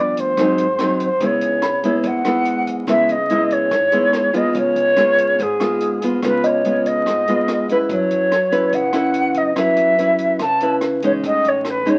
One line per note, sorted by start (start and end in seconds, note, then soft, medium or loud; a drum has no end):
0.00 0.13 G1 medium
0.00 0.35 G2 medium
0.00 0.34 F3 medium
0.00 0.34 B3 medium
0.00 0.34 D4 medium
0.00 0.21 D5 medium
0.17 0.36 D2 medium
0.17 1.01 C5 medium
0.17 kick soft
0.17 closed hi-hat soft
0.37 0.56 G#1 medium
0.37 1.19 G#2 soft
0.37 0.64 F#3 medium
0.37 0.65 C4 medium
0.37 0.65 D#4 medium
0.37 kick medium
0.37 cross-stick medium
0.37 closed hi-hat medium
0.58 1.17 D#2 medium
0.58 closed hi-hat soft
0.79 1.07 F#3 medium
0.79 1.07 C4 medium
0.79 1.08 D#4 medium
0.79 cross-stick medium
0.79 closed hi-hat soft
1.00 kick soft
1.00 closed hi-hat soft
1.04 1.27 C5 medium
1.20 1.30 C#2 medium
1.20 2.02 C#3 soft
1.20 1.63 G#3 soft
1.20 1.62 B3 soft
1.20 1.63 E4 medium
1.20 kick medium
1.20 closed hi-hat soft
1.26 2.08 C#5 medium
1.41 2.00 C#2 medium
1.41 closed hi-hat soft
1.62 2.20 B5 medium
1.62 cross-stick medium
1.62 closed hi-hat soft
1.83 2.22 G#3 medium
1.83 2.22 B3 medium
1.83 2.23 E4 medium
1.83 kick soft
1.83 closed hi-hat soft
2.03 2.63 G#1 medium
2.03 2.86 G#2 soft
2.03 2.68 F#5 medium
2.03 kick medium
2.03 closed hi-hat medium
2.25 2.84 G#3 medium
2.25 2.84 B3 medium
2.25 2.85 E4 medium
2.25 cross-stick medium
2.25 closed hi-hat soft
2.45 closed hi-hat soft
2.67 2.86 C#2 medium
2.67 kick soft
2.67 closed hi-hat soft
2.87 2.97 C#2 medium
2.87 3.69 C#3 soft
2.87 3.15 G#3 medium
2.87 3.15 B3 medium
2.87 3.15 E4 medium
2.87 3.13 E5 medium
2.87 kick medium
2.87 cross-stick medium
2.87 closed hi-hat medium
3.09 3.67 C#2 medium
3.09 3.54 D#5 medium
3.09 closed hi-hat soft
3.30 3.71 G#3 soft
3.30 3.71 B3 soft
3.30 3.72 E4 medium
3.30 closed hi-hat soft
3.50 4.38 C#5 medium
3.50 kick soft
3.50 closed hi-hat soft
3.71 4.30 G#1 medium
3.71 4.53 G#2 soft
3.71 kick medium
3.71 cross-stick medium
3.71 closed hi-hat soft
3.92 4.31 G#3 medium
3.92 4.31 B3 medium
3.92 4.31 E4 medium
3.92 closed hi-hat soft
4.13 cross-stick medium
4.13 closed hi-hat soft
4.33 4.53 C#2 medium
4.33 4.95 G#3 medium
4.33 4.95 B3 medium
4.33 4.96 F4 medium
4.33 4.56 D#5 medium
4.33 kick soft
4.33 closed hi-hat soft
4.54 4.65 C#2 medium
4.54 5.36 C#3 medium
4.54 kick medium
4.54 closed hi-hat soft
4.58 5.43 C#5 loud
4.75 5.34 C#2 medium
4.75 closed hi-hat soft
4.96 5.38 G#3 soft
4.96 5.38 B3 soft
4.96 5.39 F4 medium
4.96 cross-stick medium
4.96 closed hi-hat soft
5.18 kick soft
5.18 closed hi-hat soft
5.39 5.97 G#1 medium
5.39 6.20 G#2 medium
5.39 6.03 G#4 medium
5.39 kick medium
5.39 closed hi-hat medium
5.60 5.98 G#3 medium
5.60 5.98 B3 medium
5.60 5.98 F4 medium
5.60 cross-stick medium
5.60 closed hi-hat soft
5.80 closed hi-hat soft
6.01 6.21 C#2 medium
6.01 6.20 G#3 medium
6.01 6.20 B3 medium
6.01 6.20 F4 medium
6.01 kick soft
6.01 closed hi-hat soft
6.22 6.32 C#2 medium
6.22 7.04 C#3 medium
6.22 6.61 G#3 medium
6.22 6.62 B3 medium
6.22 6.62 F4 medium
6.22 6.47 B4 medium
6.22 kick medium
6.22 cross-stick medium
6.22 closed hi-hat medium
6.44 7.02 C#2 medium
6.44 6.88 C#5 medium
6.44 7.01 D#5 medium
6.44 closed hi-hat soft
6.65 7.24 G#3 soft
6.65 7.24 B3 medium
6.65 7.24 F4 medium
6.65 closed hi-hat soft
6.85 7.69 D#5 medium
6.85 kick soft
6.85 closed hi-hat soft
7.06 7.65 G#1 medium
7.06 7.88 G#2 soft
7.06 kick medium
7.06 cross-stick medium
7.06 closed hi-hat medium
7.28 7.66 G#3 medium
7.28 7.66 B3 medium
7.28 7.66 F4 medium
7.28 closed hi-hat soft
7.48 cross-stick medium
7.48 closed hi-hat soft
7.69 7.88 C#2 medium
7.69 8.29 C#4 medium
7.69 8.29 E4 medium
7.69 7.77 B4 medium
7.69 8.30 B4 medium
7.69 kick soft
7.69 closed hi-hat soft
7.89 7.99 F#2 medium
7.89 8.72 F#3 medium
7.89 8.76 C#5 medium
7.89 kick medium
7.89 closed hi-hat medium
8.11 8.69 F#2 medium
8.11 closed hi-hat soft
8.32 cross-stick medium
8.32 closed hi-hat soft
8.52 8.90 C#4 medium
8.52 8.91 E4 medium
8.52 8.91 B4 medium
8.52 kick soft
8.52 closed hi-hat soft
8.73 9.32 C#2 medium
8.73 9.55 C#3 soft
8.73 9.39 F#5 medium
8.73 kick medium
8.73 closed hi-hat soft
8.93 9.53 C#4 medium
8.93 9.53 E4 medium
8.93 9.53 B4 medium
8.93 cross-stick medium
8.93 closed hi-hat soft
9.14 closed hi-hat soft
9.34 9.55 F#2 medium
9.34 9.57 D#5 medium
9.34 kick soft
9.34 closed hi-hat soft
9.56 9.66 F#2 medium
9.56 10.38 F#3 medium
9.56 9.95 C#4 medium
9.56 9.95 E4 medium
9.56 9.95 B4 medium
9.56 10.37 E5 loud
9.56 kick medium
9.56 cross-stick medium
9.56 closed hi-hat medium
9.76 10.36 F#2 medium
9.76 closed hi-hat soft
9.98 10.40 C#4 soft
9.98 10.41 E4 soft
9.98 10.56 B4 soft
9.98 10.41 B4 medium
9.98 closed hi-hat soft
10.18 kick soft
10.18 closed hi-hat soft
10.39 10.99 C#2 medium
10.39 11.22 C#3 soft
10.39 10.74 A5 loud
10.39 kick soft
10.39 cross-stick medium
10.39 closed hi-hat medium
10.60 11.00 C#4 medium
10.60 11.00 E4 medium
10.60 11.01 B4 medium
10.60 closed hi-hat soft
10.81 cross-stick medium
10.81 closed hi-hat soft
11.02 11.22 E2 medium
11.02 11.83 G#3 medium
11.02 11.84 C#4 medium
11.02 11.84 D#4 medium
11.02 11.12 C#5 medium
11.02 kick soft
11.02 closed hi-hat soft
11.24 11.34 A1 medium
11.24 11.99 A2 medium
11.24 11.50 D#5 medium
11.24 kick medium
11.24 closed hi-hat medium
11.44 11.99 A1 medium
11.44 11.71 C#5 medium
11.44 closed hi-hat soft
11.65 cross-stick medium
11.65 closed hi-hat soft
11.70 11.91 B4 medium
11.86 11.99 G#3 medium
11.86 11.99 C#4 medium
11.86 11.99 D#4 medium
11.86 11.99 C#5 medium
11.86 kick soft
11.86 closed hi-hat soft